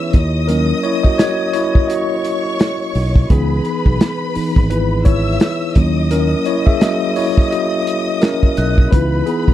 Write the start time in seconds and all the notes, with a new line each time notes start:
Already playing: E3 B3 C#4 E4 B4 C#5 E5 E6
0.13 D#2 D#5 D#6, kick, closed hi-hat
0.48 F#3 A#3 C#4 A#4, closed hi-hat
0.83 E4 C#5, closed hi-hat
1.03 F#4 D#5, kick
1.18 F#4 C#5 G#6, snare, closed hi-hat
1.47 D#5
1.53 E4 C#5, closed hi-hat
1.75 kick
1.88 F#4 C#5 D#5 C#6, closed hi-hat
2.25 closed hi-hat
2.59 snare, closed hi-hat
2.95 B1, open hi-hat
3.16 kick
3.30 C#2 E3 B3 D#4 G#4 B4 B5, kick, closed hi-hat
3.65 closed hi-hat
3.86 B1, kick
4.01 snare, closed hi-hat
4.35 E3 B3 D#4, muted fingered electric bass stroke, open hi-hat
4.56 G#1, kick
4.70 E4 B4, closed hi-hat
5.05 E4 C#5 E5 E6, kick, closed hi-hat
5.40 snare, closed hi-hat
5.75 D#2 F#3 A#3 C#4 D#5 D#6, kick, closed hi-hat
6.11 C#4 A#4, closed hi-hat
6.45 E4 C#5, closed hi-hat
6.66 G#4 E5, kick
6.81 F#3 A#3 C#4 F#4 D#5, snare, closed hi-hat
7.16 E4 C#5, open hi-hat
7.38 kick
7.51 F#4 D#5, closed hi-hat
7.87 closed hi-hat
8.22 C#4 A#4, snare, closed hi-hat
8.43 kick
8.57 B1 F#6, closed hi-hat
8.78 kick
8.91 C#2 E3 B3 D#4 E4 B4 B5, kick, closed hi-hat
9.26 B3 G#4, closed hi-hat
9.48 B1, kick